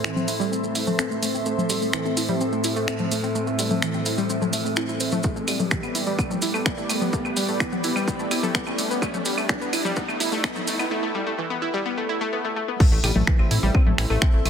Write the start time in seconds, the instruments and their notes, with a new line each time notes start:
Already playing: synth drone A2 E3, analog synth pad A3 A4 C5 E5, ambient pad C4 A4 E5 C6, riser
0.04 synth pluck E3, finger snap, maracas
0.16 synth pluck C4, low conga, maracas
0.28 synth pluck E4, open hi-hat, maracas
0.40 synth pluck G3, maracas
0.52 synth pluck C4, maracas
0.64 synth pluck A3, maracas
0.75 synth pluck E4, open hi-hat, maracas
0.87 synth pluck A3, low conga, maracas
0.99 synth pluck C4, finger snap, maracas
1.11 synth pluck A3, maracas
1.23 synth pluck A3, open hi-hat, maracas
1.34 synth pluck C4, maracas
1.46 synth pluck A3, maracas
1.58 synth pluck A3, low conga, maracas
1.70 synth pluck G3, open hi-hat, maracas
1.82 synth pluck A3, maracas
1.93 synth pluck E3, finger snap, maracas
2.05 synth pluck C4, maracas
2.17 synth pluck E4, open hi-hat, maracas
2.28 synth pluck G3, low conga, maracas
2.41 synth pluck C4, maracas
2.53 synth pluck A3, maracas
2.64 synth pluck E4, open hi-hat, maracas
2.76 synth pluck A3, maracas
2.88 synth pluck C4, finger snap, maracas
2.99 synth pluck A3, low conga, maracas
3.12 synth pluck A3, open hi-hat, maracas
3.23 synth pluck C4, maracas
3.35 synth pluck A3, maracas
3.47 synth pluck A3, maracas
3.59 synth pluck G3, open hi-hat, maracas
3.70 synth pluck A3, low conga, maracas
3.82 synth pluck E3, finger snap, maracas
3.94 synth pluck C4, maracas
4.06 synth pluck E4, open hi-hat, maracas
4.18 synth pluck G3, maracas
4.30 synth pluck C4, maracas
4.42 synth pluck A3, low conga, maracas
4.53 synth pluck A3, open hi-hat, maracas
4.65 synth pluck A3, maracas
4.76 synth pluck E4, finger snap, maracas
4.89 synth pluck E4, maracas
5.00 synth pluck C5, open hi-hat, maracas
5.12 synth pluck A3, low conga, maracas
5.23 analog synth pad G3 G4 B4 D5, synth pluck A3, ambient pad B3, kick, maracas
5.36 synth pluck A3, maracas
5.48 synth pluck G3, ambient pad G4, open hi-hat, claves, maracas
5.59 synth pluck A3, low conga, maracas
5.67 ambient pad D5, finger snap, maracas
5.71 synth pluck E3, ambient pad B5, kick
5.83 synth pluck B3, claves, maracas
5.95 synth pluck E4, open hi-hat, maracas
6.07 synth pluck G3, maracas
6.19 synth pluck B3, kick, claves, maracas
6.30 synth pluck A3, low conga, maracas
6.42 synth pluck E4, open hi-hat, maracas
6.54 synth pluck A3, claves, maracas
6.66 synth pluck B3, finger snap, kick, maracas
6.78 synth pluck A3, maracas
6.89 synth pluck A3, open hi-hat, claves, maracas
7.01 synth pluck B3, low conga, maracas
7.13 synth pluck A3, kick, maracas
7.25 synth pluck A3, claves, maracas
7.37 synth pluck G3, open hi-hat, maracas
7.48 synth pluck A3, maracas
7.60 synth pluck E3, finger snap, kick, claves, maracas
7.72 synth pluck B3, low conga, maracas
7.84 synth pluck E4, open hi-hat, maracas
7.96 synth pluck G3, claves, maracas
8.08 synth pluck B3, kick, maracas
8.19 synth pluck A3, maracas
8.31 synth pluck E4, open hi-hat, claves, maracas
8.43 synth pluck A3, low conga, maracas
8.55 synth pluck B3, finger snap, kick, maracas
8.67 synth pluck A3, claves, maracas
8.78 synth pluck A3, open hi-hat, maracas
8.90 synth pluck B3, maracas
9.02 synth pluck A3, kick, claves, maracas
9.14 synth pluck A3, low conga, maracas
9.25 synth pluck G3, open hi-hat, maracas
9.38 synth pluck A3, claves, maracas
9.49 synth pluck E3, finger snap, kick, maracas
9.61 synth pluck B3, maracas
9.73 synth pluck E4, open hi-hat, claves, maracas
9.85 synth pluck G3, low conga, maracas
9.96 synth pluck B3, kick, maracas
10.08 synth pluck A3, claves, maracas
10.20 synth pluck E4, open hi-hat, maracas
10.32 synth pluck A3, maracas
10.44 synth pluck B3, finger snap, kick, claves, maracas
10.56 synth pluck A3, low conga, maracas
10.67 synth pluck A3, open hi-hat, maracas
10.79 synth pluck B3, claves, maracas
10.91 synth pluck A3
11.03 synth pluck A3
11.15 synth pluck G3
11.27 synth pluck A3
11.38 synth pluck E3
11.50 synth pluck B3
11.62 synth pluck E4
11.74 synth pluck G3
11.86 synth pluck B3, swell
11.97 synth pluck A3
12.09 synth pluck E4
12.21 synth pluck A3
12.33 synth pluck B3
12.45 synth pluck A3
12.56 synth pluck A3
12.68 synth pluck B3
12.80 synth pluck A3, analog synth pad A3 A4 C5 E5, ambient pad C4 A4, kick, crash, impact
12.92 analog synth bass A1, synth pluck A3
12.99 ambient pad C6
13.04 analog synth bass A1, synth pluck G3, open hi-hat, claves
13.11 ambient pad E5
13.16 analog synth bass A1, synth pluck A3, low conga
13.27 synth pluck E3, finger snap, kick
13.39 analog synth bass A1, synth pluck C4, claves
13.51 analog synth bass A2, synth pluck E4, open hi-hat
13.63 analog synth bass A1, synth pluck G3
13.75 synth pluck C4, kick, claves
13.86 analog synth bass A1, synth pluck A3, low conga
13.98 analog synth bass A1, synth pluck E4, finger snap, open hi-hat
14.10 analog synth bass A1, synth pluck A3, claves
14.22 synth pluck C4, finger snap, kick
14.34 analog synth bass A1, synth pluck A3
14.45 analog synth bass A1, synth pluck A3, open hi-hat, claves